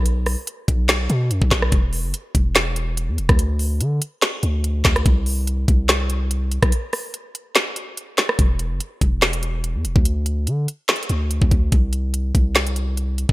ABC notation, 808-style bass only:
X:1
M:4/4
L:1/16
Q:1/4=144
K:Bphr
V:1 name="808-style bass" clef=bass
B,,,3 z3 B,,,4 B,,2 F,, B,,, B,,,2 | E,,,3 F,,, z2 E,,,6- E,,, E,, E,,, D,,- | D,,4 D,2 z4 D,,4 D,,2 | C,,6 C,,8- C,, B,,, |
z16 | E,,,3 F,,, z2 E,,,6- E,,, E,, E,,, D,,- | D,,4 D,2 z4 D,,3 D,, D,,2 | C,,6 C,,8- C,, B,,, |]